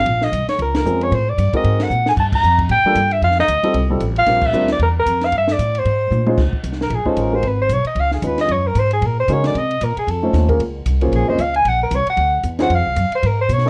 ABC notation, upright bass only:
X:1
M:4/4
L:1/8
Q:"Swing" 1/4=228
K:Bblyd
V:1 name="Upright bass" clef=bass
B,,,2 C,, z _D,,2 F,,2 | A,,2 G,, z _A,,2 B,,2 | G,,2 F,,2 A,, z G,,2 | F,,2 D,, z C,,2 A,,,2 |
B,,,2 D,,2 E,,2 F,,2 | G,,2 A,,2 _A,,2 B,,2 | [K:Db] D,, z C,,2 B,,, z =A,,,2 | A,,,2 _C,, z D,,2 E,,2 |
G,,2 A,,2 B,,2 D,2 | C,2 B,, z F,,2 E,,2 | D,,2 C,,2 (3B,,, A,,, F,,, D,,2 | B,,,2 C,, z =D,,2 _F,,2 |
(3F,, D,, C,, G,, z A,,2 _C,2 |]